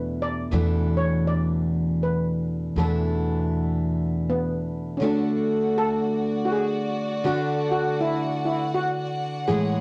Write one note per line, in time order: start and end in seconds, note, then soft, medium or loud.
0.00 0.48 E2 medium
0.00 0.50 E2 medium
0.00 0.51 B2 medium
0.00 0.52 E3 medium
0.00 0.53 A3 medium
0.00 0.53 D4 medium
0.00 0.53 E4 medium
0.00 0.23 B4 medium
0.22 0.99 D5 medium
0.51 2.75 E2 medium
0.51 2.73 E2 medium
0.51 2.77 B2 medium
0.51 2.77 E3 medium
0.51 2.78 A3 medium
0.51 2.79 D4 medium
0.51 2.78 E4 medium
0.97 1.25 C#5 medium
1.27 2.04 D5 medium
2.03 2.80 B4 medium
2.76 4.97 E2 medium
2.76 5.01 E2 medium
2.76 5.02 B2 medium
2.76 4.99 E3 medium
2.76 5.00 A3 medium
2.76 5.01 D4 medium
2.76 5.03 E4 medium
2.76 4.23 A4 medium
4.30 4.99 B3 medium
4.97 7.23 D3 medium
4.97 5.02 C#4 medium
4.97 9.44 F#4 medium
4.97 9.44 D5 medium
4.97 9.81 F#5 medium
5.01 7.24 A3 medium
5.01 7.25 D4 medium
5.01 5.80 D4 loud
5.01 7.26 F#4 medium
5.78 6.48 A4 loud
6.45 6.51 F#4 medium
6.52 7.28 G#4 medium
7.24 9.48 D3 medium
7.24 9.49 A3 medium
7.24 9.49 D4 medium
7.24 7.70 F#4 loud
7.24 9.49 F#4 medium
7.71 7.98 F#4 medium
8.01 8.44 E4 loud
8.45 8.73 E4 medium
8.75 9.51 F#4 loud
9.47 9.81 A2 medium
9.47 9.81 E3 medium
9.47 9.81 G#3 medium
9.47 9.81 E4 medium
9.47 9.81 G#4 loud
9.47 9.81 G#4 medium
9.47 9.81 C#5 medium